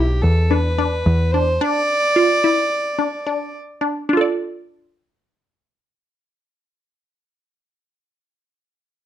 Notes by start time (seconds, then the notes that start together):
Already playing: B1 E4 G4
0.22 E2 A4
0.50 D4 B4
0.78 D4
1.06 E2
1.32 D4 C5
1.60 D4 D5
2.16 F4
2.44 E4
2.99 D4
3.27 D4
3.81 D4
4.09 D4
4.13 F4 A4
4.21 D5